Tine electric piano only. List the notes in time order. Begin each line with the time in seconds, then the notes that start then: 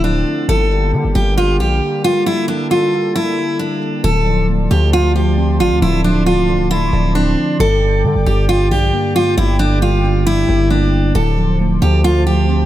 4.04 D3
4.26 F3
4.49 A3
4.71 D3
4.93 D3
5.15 F3
5.38 C4
5.82 D3
6.04 F3
6.27 A3
6.49 D3
6.71 D3
6.93 F3
7.15 C4
7.60 G2
7.82 D3
8.04 G3
8.27 G2
8.48 G2
8.71 D3
8.93 A#3
9.37 G2
9.60 D3
9.82 G3
10.04 G2
10.26 G2
10.49 D3
10.71 A#3
11.15 D3
11.37 F3
11.60 A3
11.82 D3
12.04 D3
12.26 F3
12.49 C4